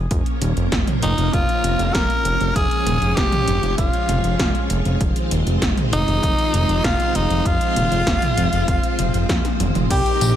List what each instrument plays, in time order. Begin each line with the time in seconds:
0.10 analog synth bass F1, string machine F3 A#3 C#4 A#4 C#5, kick, closed hi-hat
0.26 closed hi-hat
0.41 analog synth bass D#1, closed hi-hat
0.57 analog synth bass F1, closed hi-hat
0.72 analog synth bass F1, kick, snare, closed hi-hat
0.87 closed hi-hat, mid tom
1.02 analog synth bass F1, tenor saxophone D#4, closed hi-hat
1.18 analog synth bass F1, closed hi-hat
1.33 analog synth bass F1, tenor saxophone F4, kick, closed hi-hat
1.49 closed hi-hat
1.64 analog synth bass F1, closed hi-hat
1.79 analog synth bass F1, closed hi-hat
1.94 analog synth bass F1, tenor saxophone A#4, kick, snare, closed hi-hat
2.10 closed hi-hat
2.25 analog synth bass F1, closed hi-hat
2.40 analog synth bass F1, closed hi-hat
2.55 analog synth bass F1, string machine F3 G#3 F4, tenor saxophone G#4, kick, closed hi-hat
2.71 closed hi-hat
2.86 analog synth bass D#1, closed hi-hat, mid tom
3.01 analog synth bass F1, closed hi-hat
3.16 analog synth bass F1, tenor saxophone G4, kick, snare, closed hi-hat
3.32 closed hi-hat, mid tom
3.47 analog synth bass F1, closed hi-hat
3.63 analog synth bass F1, closed hi-hat
3.77 analog synth bass F1, tenor saxophone F4, kick, closed hi-hat
3.93 closed hi-hat
4.08 analog synth bass F1, closed hi-hat, mid tom
4.24 analog synth bass F1, closed hi-hat
4.39 analog synth bass F1, kick, snare, closed hi-hat
4.55 closed hi-hat
4.70 analog synth bass F1, closed hi-hat
4.85 analog synth bass F1, closed hi-hat
5.00 analog synth bass F1, string machine D#3 C4 C5, kick, closed hi-hat
5.16 closed hi-hat
5.31 analog synth bass D#1, closed hi-hat
5.47 analog synth bass F1, closed hi-hat
5.62 analog synth bass F1, kick, snare, closed hi-hat
5.77 closed hi-hat, mid tom
5.92 analog synth bass F1, tenor saxophone D#4, closed hi-hat
6.08 analog synth bass F1, closed hi-hat
6.23 analog synth bass F1, kick, closed hi-hat
6.39 closed hi-hat
6.53 analog synth bass F1, closed hi-hat
6.69 analog synth bass F1, closed hi-hat
6.84 analog synth bass F1, tenor saxophone F4, kick, snare, closed hi-hat
7.00 closed hi-hat
7.15 analog synth bass F1, tenor saxophone D#4, closed hi-hat
7.30 analog synth bass F1, closed hi-hat
7.45 analog synth bass F1, string machine F3, tenor saxophone F4, kick, closed hi-hat
7.61 closed hi-hat
7.76 analog synth bass D#1, closed hi-hat, mid tom
7.91 analog synth bass F1, closed hi-hat
8.07 analog synth bass F1, kick, snare, closed hi-hat
8.22 closed hi-hat, mid tom
8.37 analog synth bass F1, closed hi-hat
8.53 analog synth bass F1, closed hi-hat
8.68 analog synth bass F1, kick, closed hi-hat
8.83 closed hi-hat
8.99 analog synth bass F1, closed hi-hat, mid tom
9.14 analog synth bass F1, closed hi-hat
9.29 analog synth bass F2, kick, snare, closed hi-hat, high tom
9.45 snare, closed hi-hat, high tom
9.60 analog synth bass F1, closed hi-hat, mid tom
9.75 analog synth bass F1, closed hi-hat, mid tom
9.90 analog synth bass C2, string machine G3 C4 D#4 A#4 C5, tenor saxophone G4, digital synth lead G5, kick, closed hi-hat, tambourine, crash
10.06 closed hi-hat
10.21 analog synth bass A#1, closed hi-hat, mid tom, tambourine